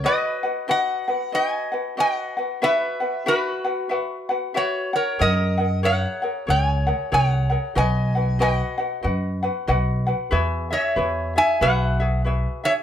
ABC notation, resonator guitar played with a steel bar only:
X:1
M:4/4
L:1/8
Q:"Swing" 1/4=93
K:B
V:1 name="Resonator guitar played with a steel bar"
[Bd]2 [df]2 [dg]2 [df]2 | [Be]2 [FB]4 [Fc] [Ac] | [Ad]2 [cf]2 [cg]2 [cf]2 | [dg]2 [df]4- [df] z |
[K:E] z [ce]2 [eg] [Bf]2 z [ce] |]